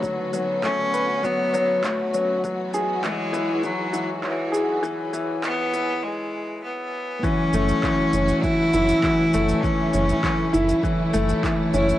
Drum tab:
SH |x-x-x-x-x-x-x-x-|x-x-x-x-x-x-x-x-|x-x-x-x---------|x-xxx-xxx-xxx-xx|
CP |----x-------x---|----x-------x---|----x-----------|----x-------x---|
BD |o---o---o---o---|o---o---o---o---|o---o-----------|o---o---o---o---|

SH |x-xxx-xxx-xxx-xx|
CP |----x-------x---|
BD |o---o---o---o---|